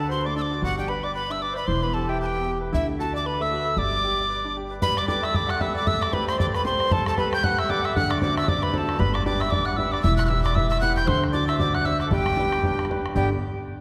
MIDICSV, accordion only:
0, 0, Header, 1, 2, 480
1, 0, Start_track
1, 0, Key_signature, 1, "major"
1, 0, Tempo, 262467
1, 1138, Time_signature, 4, 2, 24, 8
1, 9296, Tempo, 260417
1, 25374, End_track
2, 0, Start_track
2, 0, Title_t, "Accordion"
2, 0, Program_c, 0, 21
2, 159, Note_on_c, 0, 72, 72
2, 445, Note_on_c, 0, 74, 84
2, 452, Note_off_c, 0, 72, 0
2, 611, Note_off_c, 0, 74, 0
2, 639, Note_on_c, 0, 74, 76
2, 1142, Note_on_c, 0, 66, 85
2, 1144, Note_off_c, 0, 74, 0
2, 1397, Note_off_c, 0, 66, 0
2, 1437, Note_on_c, 0, 67, 66
2, 1624, Note_on_c, 0, 71, 79
2, 1636, Note_off_c, 0, 67, 0
2, 1905, Note_off_c, 0, 71, 0
2, 1909, Note_on_c, 0, 74, 64
2, 2112, Note_off_c, 0, 74, 0
2, 2112, Note_on_c, 0, 71, 66
2, 2379, Note_on_c, 0, 76, 77
2, 2390, Note_off_c, 0, 71, 0
2, 2568, Note_off_c, 0, 76, 0
2, 2583, Note_on_c, 0, 74, 69
2, 2789, Note_on_c, 0, 72, 57
2, 2795, Note_off_c, 0, 74, 0
2, 2846, Note_on_c, 0, 71, 72
2, 2857, Note_off_c, 0, 72, 0
2, 3041, Note_off_c, 0, 71, 0
2, 3057, Note_on_c, 0, 72, 88
2, 3316, Note_off_c, 0, 72, 0
2, 3330, Note_on_c, 0, 71, 69
2, 3523, Note_off_c, 0, 71, 0
2, 3540, Note_on_c, 0, 69, 73
2, 3802, Note_on_c, 0, 67, 71
2, 3825, Note_off_c, 0, 69, 0
2, 3994, Note_off_c, 0, 67, 0
2, 4022, Note_on_c, 0, 67, 82
2, 4725, Note_off_c, 0, 67, 0
2, 4981, Note_on_c, 0, 64, 78
2, 5238, Note_off_c, 0, 64, 0
2, 5461, Note_on_c, 0, 69, 77
2, 5718, Note_off_c, 0, 69, 0
2, 5730, Note_on_c, 0, 74, 64
2, 5945, Note_off_c, 0, 74, 0
2, 5953, Note_on_c, 0, 71, 75
2, 6228, Note_on_c, 0, 76, 91
2, 6232, Note_off_c, 0, 71, 0
2, 6860, Note_off_c, 0, 76, 0
2, 6918, Note_on_c, 0, 74, 74
2, 8275, Note_off_c, 0, 74, 0
2, 8814, Note_on_c, 0, 71, 86
2, 9084, Note_on_c, 0, 74, 74
2, 9099, Note_off_c, 0, 71, 0
2, 9248, Note_off_c, 0, 74, 0
2, 9276, Note_on_c, 0, 74, 98
2, 9543, Note_off_c, 0, 74, 0
2, 9556, Note_on_c, 0, 76, 84
2, 9770, Note_on_c, 0, 74, 77
2, 9776, Note_off_c, 0, 76, 0
2, 10019, Note_on_c, 0, 78, 81
2, 10059, Note_off_c, 0, 74, 0
2, 10244, Note_on_c, 0, 76, 95
2, 10249, Note_off_c, 0, 78, 0
2, 10514, Note_on_c, 0, 74, 72
2, 10537, Note_off_c, 0, 76, 0
2, 10729, Note_on_c, 0, 76, 92
2, 10736, Note_off_c, 0, 74, 0
2, 10994, Note_on_c, 0, 74, 76
2, 11020, Note_off_c, 0, 76, 0
2, 11195, Note_off_c, 0, 74, 0
2, 11228, Note_on_c, 0, 71, 76
2, 11482, Note_off_c, 0, 71, 0
2, 11504, Note_on_c, 0, 72, 74
2, 11690, Note_on_c, 0, 74, 96
2, 11692, Note_off_c, 0, 72, 0
2, 11953, Note_off_c, 0, 74, 0
2, 11982, Note_on_c, 0, 71, 71
2, 12171, Note_off_c, 0, 71, 0
2, 12198, Note_on_c, 0, 72, 89
2, 12685, Note_on_c, 0, 69, 97
2, 12686, Note_off_c, 0, 72, 0
2, 12926, Note_off_c, 0, 69, 0
2, 12953, Note_on_c, 0, 69, 89
2, 13157, Note_off_c, 0, 69, 0
2, 13160, Note_on_c, 0, 71, 93
2, 13428, Note_on_c, 0, 79, 94
2, 13436, Note_off_c, 0, 71, 0
2, 13615, Note_off_c, 0, 79, 0
2, 13647, Note_on_c, 0, 78, 100
2, 13894, Note_off_c, 0, 78, 0
2, 13917, Note_on_c, 0, 76, 78
2, 14099, Note_on_c, 0, 74, 83
2, 14120, Note_off_c, 0, 76, 0
2, 14316, Note_off_c, 0, 74, 0
2, 14325, Note_on_c, 0, 78, 60
2, 14379, Note_on_c, 0, 76, 89
2, 14388, Note_off_c, 0, 78, 0
2, 14571, Note_off_c, 0, 76, 0
2, 14579, Note_on_c, 0, 78, 93
2, 14853, Note_on_c, 0, 74, 87
2, 14867, Note_off_c, 0, 78, 0
2, 15052, Note_off_c, 0, 74, 0
2, 15080, Note_on_c, 0, 74, 93
2, 15330, Note_off_c, 0, 74, 0
2, 15342, Note_on_c, 0, 76, 83
2, 15532, Note_off_c, 0, 76, 0
2, 15562, Note_on_c, 0, 74, 88
2, 15828, Note_on_c, 0, 71, 73
2, 15838, Note_off_c, 0, 74, 0
2, 16023, Note_on_c, 0, 69, 77
2, 16036, Note_off_c, 0, 71, 0
2, 16472, Note_off_c, 0, 69, 0
2, 16504, Note_on_c, 0, 71, 91
2, 16762, Note_off_c, 0, 71, 0
2, 16783, Note_on_c, 0, 74, 77
2, 16959, Note_off_c, 0, 74, 0
2, 16986, Note_on_c, 0, 74, 86
2, 17267, Note_on_c, 0, 76, 86
2, 17271, Note_off_c, 0, 74, 0
2, 17473, Note_on_c, 0, 74, 86
2, 17475, Note_off_c, 0, 76, 0
2, 17730, Note_on_c, 0, 78, 83
2, 17753, Note_off_c, 0, 74, 0
2, 17926, Note_off_c, 0, 78, 0
2, 17960, Note_on_c, 0, 76, 70
2, 18210, Note_off_c, 0, 76, 0
2, 18217, Note_on_c, 0, 74, 86
2, 18410, Note_off_c, 0, 74, 0
2, 18432, Note_on_c, 0, 76, 94
2, 18876, Note_off_c, 0, 76, 0
2, 18914, Note_on_c, 0, 76, 80
2, 19167, Note_off_c, 0, 76, 0
2, 19187, Note_on_c, 0, 74, 81
2, 19388, Note_on_c, 0, 76, 97
2, 19395, Note_off_c, 0, 74, 0
2, 19638, Note_off_c, 0, 76, 0
2, 19665, Note_on_c, 0, 76, 89
2, 19854, Note_off_c, 0, 76, 0
2, 19865, Note_on_c, 0, 78, 87
2, 20122, Note_off_c, 0, 78, 0
2, 20130, Note_on_c, 0, 79, 86
2, 20318, Note_on_c, 0, 72, 89
2, 20346, Note_off_c, 0, 79, 0
2, 20587, Note_off_c, 0, 72, 0
2, 20794, Note_on_c, 0, 74, 90
2, 21092, Note_on_c, 0, 76, 84
2, 21093, Note_off_c, 0, 74, 0
2, 21283, Note_on_c, 0, 74, 75
2, 21307, Note_off_c, 0, 76, 0
2, 21549, Note_off_c, 0, 74, 0
2, 21568, Note_on_c, 0, 78, 88
2, 21750, Note_on_c, 0, 76, 87
2, 21763, Note_off_c, 0, 78, 0
2, 22112, Note_off_c, 0, 76, 0
2, 22158, Note_on_c, 0, 69, 49
2, 22264, Note_off_c, 0, 69, 0
2, 22264, Note_on_c, 0, 67, 81
2, 23626, Note_off_c, 0, 67, 0
2, 24174, Note_on_c, 0, 67, 98
2, 24432, Note_off_c, 0, 67, 0
2, 25374, End_track
0, 0, End_of_file